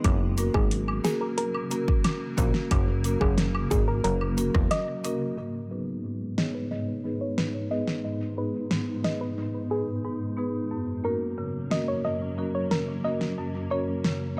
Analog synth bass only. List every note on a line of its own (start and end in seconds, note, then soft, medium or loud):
0.04 0.50 F#1 loud
0.54 1.00 G#1 loud
2.38 2.53 A#1 medium
2.71 3.17 F#1 loud
3.21 3.67 F#1 loud
3.71 4.01 G#1 loud
4.04 4.50 F#1 loud
4.55 4.70 E1 medium